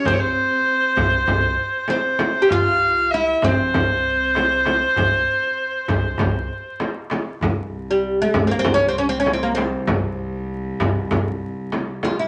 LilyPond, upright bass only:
\new Staff \with { instrumentName = "Upright bass" } { \clef bass \time 4/4 \tempo 4 = 98 c,8 r4 c,8 c,8 r4. | c,4. bes,,8 c,2 | c,8 r4 c,8 c,8 r4. | c,4. c,8 c,2 |
c,4. c,8 c,8 r4. | }